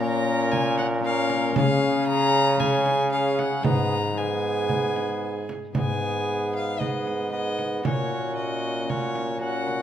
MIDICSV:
0, 0, Header, 1, 7, 480
1, 0, Start_track
1, 0, Tempo, 522193
1, 1440, Time_signature, 4, 2, 24, 8
1, 9028, End_track
2, 0, Start_track
2, 0, Title_t, "Violin"
2, 0, Program_c, 0, 40
2, 5, Note_on_c, 0, 82, 101
2, 474, Note_on_c, 0, 80, 93
2, 488, Note_off_c, 0, 82, 0
2, 711, Note_off_c, 0, 80, 0
2, 717, Note_on_c, 0, 78, 86
2, 790, Note_off_c, 0, 78, 0
2, 966, Note_on_c, 0, 77, 91
2, 1429, Note_off_c, 0, 77, 0
2, 1434, Note_on_c, 0, 77, 90
2, 1903, Note_off_c, 0, 77, 0
2, 1908, Note_on_c, 0, 82, 122
2, 2391, Note_on_c, 0, 80, 99
2, 2405, Note_off_c, 0, 82, 0
2, 2867, Note_off_c, 0, 80, 0
2, 2872, Note_on_c, 0, 77, 82
2, 3114, Note_on_c, 0, 78, 79
2, 3127, Note_off_c, 0, 77, 0
2, 3342, Note_on_c, 0, 82, 91
2, 3356, Note_off_c, 0, 78, 0
2, 3833, Note_on_c, 0, 80, 75
2, 3847, Note_off_c, 0, 82, 0
2, 5049, Note_off_c, 0, 80, 0
2, 5304, Note_on_c, 0, 80, 74
2, 5982, Note_off_c, 0, 80, 0
2, 6032, Note_on_c, 0, 77, 77
2, 6248, Note_on_c, 0, 75, 65
2, 6262, Note_off_c, 0, 77, 0
2, 6725, Note_off_c, 0, 75, 0
2, 6730, Note_on_c, 0, 75, 65
2, 7201, Note_off_c, 0, 75, 0
2, 7221, Note_on_c, 0, 73, 62
2, 7682, Note_off_c, 0, 73, 0
2, 7688, Note_on_c, 0, 75, 74
2, 8177, Note_on_c, 0, 73, 73
2, 8191, Note_off_c, 0, 75, 0
2, 8650, Note_off_c, 0, 73, 0
2, 8655, Note_on_c, 0, 78, 71
2, 9028, Note_off_c, 0, 78, 0
2, 9028, End_track
3, 0, Start_track
3, 0, Title_t, "Viola"
3, 0, Program_c, 1, 41
3, 6, Note_on_c, 1, 70, 67
3, 943, Note_off_c, 1, 70, 0
3, 948, Note_on_c, 1, 70, 66
3, 1430, Note_on_c, 1, 68, 72
3, 1444, Note_off_c, 1, 70, 0
3, 2389, Note_off_c, 1, 68, 0
3, 2394, Note_on_c, 1, 68, 62
3, 2854, Note_off_c, 1, 68, 0
3, 2860, Note_on_c, 1, 68, 72
3, 3333, Note_off_c, 1, 68, 0
3, 3339, Note_on_c, 1, 68, 62
3, 3822, Note_off_c, 1, 68, 0
3, 3833, Note_on_c, 1, 68, 73
3, 5080, Note_off_c, 1, 68, 0
3, 5295, Note_on_c, 1, 68, 60
3, 6217, Note_off_c, 1, 68, 0
3, 6250, Note_on_c, 1, 68, 42
3, 6721, Note_off_c, 1, 68, 0
3, 6745, Note_on_c, 1, 68, 45
3, 7208, Note_off_c, 1, 68, 0
3, 7218, Note_on_c, 1, 66, 56
3, 8152, Note_off_c, 1, 66, 0
3, 8180, Note_on_c, 1, 66, 48
3, 8641, Note_off_c, 1, 66, 0
3, 8649, Note_on_c, 1, 66, 49
3, 9028, Note_off_c, 1, 66, 0
3, 9028, End_track
4, 0, Start_track
4, 0, Title_t, "Bassoon"
4, 0, Program_c, 2, 70
4, 10, Note_on_c, 2, 61, 74
4, 947, Note_off_c, 2, 61, 0
4, 971, Note_on_c, 2, 61, 69
4, 1434, Note_off_c, 2, 61, 0
4, 1448, Note_on_c, 2, 61, 69
4, 2379, Note_off_c, 2, 61, 0
4, 2390, Note_on_c, 2, 61, 76
4, 2861, Note_off_c, 2, 61, 0
4, 2876, Note_on_c, 2, 61, 70
4, 3357, Note_on_c, 2, 59, 59
4, 3370, Note_off_c, 2, 61, 0
4, 3671, Note_off_c, 2, 59, 0
4, 3838, Note_on_c, 2, 59, 59
4, 5015, Note_off_c, 2, 59, 0
4, 5299, Note_on_c, 2, 59, 50
4, 6219, Note_off_c, 2, 59, 0
4, 6249, Note_on_c, 2, 59, 50
4, 6720, Note_off_c, 2, 59, 0
4, 6735, Note_on_c, 2, 59, 51
4, 7217, Note_on_c, 2, 61, 54
4, 7231, Note_off_c, 2, 59, 0
4, 8170, Note_off_c, 2, 61, 0
4, 8188, Note_on_c, 2, 61, 54
4, 8642, Note_off_c, 2, 61, 0
4, 8648, Note_on_c, 2, 61, 53
4, 9028, Note_off_c, 2, 61, 0
4, 9028, End_track
5, 0, Start_track
5, 0, Title_t, "Harp"
5, 0, Program_c, 3, 46
5, 0, Note_on_c, 3, 46, 59
5, 0, Note_on_c, 3, 58, 55
5, 0, Note_on_c, 3, 61, 51
5, 0, Note_on_c, 3, 73, 57
5, 912, Note_off_c, 3, 58, 0
5, 921, Note_off_c, 3, 61, 0
5, 923, Note_on_c, 3, 58, 59
5, 930, Note_off_c, 3, 73, 0
5, 932, Note_on_c, 3, 61, 59
5, 941, Note_on_c, 3, 73, 58
5, 1394, Note_off_c, 3, 61, 0
5, 1399, Note_on_c, 3, 56, 58
5, 1407, Note_on_c, 3, 61, 58
5, 1411, Note_off_c, 3, 73, 0
5, 1422, Note_on_c, 3, 73, 59
5, 1434, Note_on_c, 3, 49, 65
5, 1439, Note_off_c, 3, 58, 0
5, 1451, Note_off_c, 3, 46, 0
5, 2351, Note_off_c, 3, 56, 0
5, 2360, Note_off_c, 3, 61, 0
5, 2362, Note_on_c, 3, 56, 55
5, 2371, Note_on_c, 3, 61, 59
5, 2374, Note_off_c, 3, 73, 0
5, 2385, Note_on_c, 3, 73, 57
5, 3316, Note_off_c, 3, 56, 0
5, 3327, Note_on_c, 3, 56, 48
5, 3341, Note_on_c, 3, 63, 53
5, 3354, Note_on_c, 3, 71, 50
5, 3362, Note_off_c, 3, 61, 0
5, 3368, Note_on_c, 3, 44, 54
5, 3369, Note_off_c, 3, 73, 0
5, 3370, Note_off_c, 3, 49, 0
5, 3783, Note_off_c, 3, 56, 0
5, 3794, Note_on_c, 3, 56, 52
5, 3798, Note_off_c, 3, 63, 0
5, 3805, Note_off_c, 3, 71, 0
5, 3809, Note_on_c, 3, 63, 53
5, 3816, Note_on_c, 3, 71, 48
5, 5263, Note_on_c, 3, 59, 40
5, 5268, Note_off_c, 3, 63, 0
5, 5276, Note_off_c, 3, 71, 0
5, 5279, Note_on_c, 3, 63, 39
5, 5287, Note_on_c, 3, 71, 40
5, 5290, Note_off_c, 3, 44, 0
5, 5301, Note_on_c, 3, 44, 44
5, 6223, Note_off_c, 3, 59, 0
5, 6234, Note_off_c, 3, 63, 0
5, 6234, Note_on_c, 3, 59, 39
5, 6245, Note_on_c, 3, 63, 41
5, 6246, Note_off_c, 3, 71, 0
5, 6257, Note_on_c, 3, 71, 39
5, 6697, Note_off_c, 3, 59, 0
5, 6708, Note_on_c, 3, 59, 39
5, 6709, Note_off_c, 3, 63, 0
5, 6716, Note_off_c, 3, 71, 0
5, 6720, Note_on_c, 3, 63, 41
5, 6727, Note_on_c, 3, 71, 40
5, 7181, Note_on_c, 3, 61, 40
5, 7190, Note_on_c, 3, 66, 38
5, 7203, Note_on_c, 3, 70, 44
5, 7208, Note_off_c, 3, 56, 0
5, 7214, Note_on_c, 3, 46, 44
5, 7218, Note_off_c, 3, 59, 0
5, 7225, Note_off_c, 3, 63, 0
5, 7228, Note_off_c, 3, 71, 0
5, 7234, Note_off_c, 3, 44, 0
5, 8117, Note_off_c, 3, 61, 0
5, 8128, Note_on_c, 3, 61, 42
5, 8135, Note_off_c, 3, 66, 0
5, 8146, Note_off_c, 3, 70, 0
5, 8146, Note_on_c, 3, 66, 41
5, 8157, Note_on_c, 3, 70, 40
5, 8604, Note_off_c, 3, 61, 0
5, 8614, Note_off_c, 3, 66, 0
5, 8615, Note_on_c, 3, 61, 42
5, 8625, Note_off_c, 3, 70, 0
5, 8625, Note_on_c, 3, 66, 45
5, 8636, Note_on_c, 3, 70, 42
5, 9028, Note_off_c, 3, 46, 0
5, 9028, Note_off_c, 3, 61, 0
5, 9028, Note_off_c, 3, 66, 0
5, 9028, Note_off_c, 3, 70, 0
5, 9028, End_track
6, 0, Start_track
6, 0, Title_t, "Trombone"
6, 0, Program_c, 4, 57
6, 0, Note_on_c, 4, 46, 76
6, 1407, Note_off_c, 4, 46, 0
6, 1440, Note_on_c, 4, 49, 89
6, 3317, Note_off_c, 4, 49, 0
6, 3353, Note_on_c, 4, 44, 71
6, 5017, Note_off_c, 4, 44, 0
6, 5286, Note_on_c, 4, 44, 57
6, 7171, Note_off_c, 4, 44, 0
6, 7210, Note_on_c, 4, 46, 64
6, 9028, Note_off_c, 4, 46, 0
6, 9028, End_track
7, 0, Start_track
7, 0, Title_t, "Frame drum"
7, 486, Note_on_c, 9, 64, 44
7, 578, Note_off_c, 9, 64, 0
7, 716, Note_on_c, 9, 64, 46
7, 807, Note_off_c, 9, 64, 0
7, 1194, Note_on_c, 9, 64, 47
7, 1286, Note_off_c, 9, 64, 0
7, 1433, Note_on_c, 9, 64, 86
7, 1525, Note_off_c, 9, 64, 0
7, 2392, Note_on_c, 9, 64, 51
7, 2484, Note_off_c, 9, 64, 0
7, 2629, Note_on_c, 9, 64, 48
7, 2721, Note_off_c, 9, 64, 0
7, 3116, Note_on_c, 9, 64, 50
7, 3208, Note_off_c, 9, 64, 0
7, 3350, Note_on_c, 9, 64, 79
7, 3442, Note_off_c, 9, 64, 0
7, 4314, Note_on_c, 9, 64, 50
7, 4406, Note_off_c, 9, 64, 0
7, 4562, Note_on_c, 9, 64, 42
7, 4654, Note_off_c, 9, 64, 0
7, 5049, Note_on_c, 9, 64, 49
7, 5140, Note_off_c, 9, 64, 0
7, 5284, Note_on_c, 9, 64, 68
7, 5376, Note_off_c, 9, 64, 0
7, 6258, Note_on_c, 9, 64, 45
7, 6350, Note_off_c, 9, 64, 0
7, 6499, Note_on_c, 9, 64, 42
7, 6591, Note_off_c, 9, 64, 0
7, 6975, Note_on_c, 9, 64, 42
7, 7067, Note_off_c, 9, 64, 0
7, 7215, Note_on_c, 9, 64, 75
7, 7307, Note_off_c, 9, 64, 0
7, 8180, Note_on_c, 9, 64, 45
7, 8272, Note_off_c, 9, 64, 0
7, 8414, Note_on_c, 9, 64, 44
7, 8506, Note_off_c, 9, 64, 0
7, 8891, Note_on_c, 9, 64, 41
7, 8982, Note_off_c, 9, 64, 0
7, 9028, End_track
0, 0, End_of_file